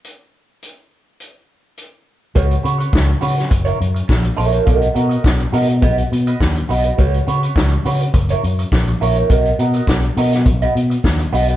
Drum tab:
HH |x---x---x---x---|xxxx-xoxxxxx-xox|xxxx-xoxxxxx-xox|xxxx-xoxxxxx-xox|
SD |----------------|----o--o----o---|----o-------o---|----o-------o---|
BD |----------------|o---o---o---o---|o---o---o---o---|o---o---o---o---|

HH |xxxx-xoxxxxx-xox|
SD |----o--o----o---|
BD |o---o---o---o---|